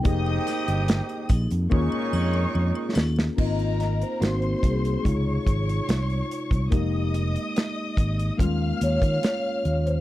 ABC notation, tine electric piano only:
X:1
M:4/4
L:1/8
Q:1/4=72
K:Ab
V:1 name="Tine electric piano"
[B,EGA]4 [B,DFA]4 | [B,CEF]2 [B,CE_G]2 [C,A,EF]4 | [A,B,EG]4 [G,A,B,DF]4 |]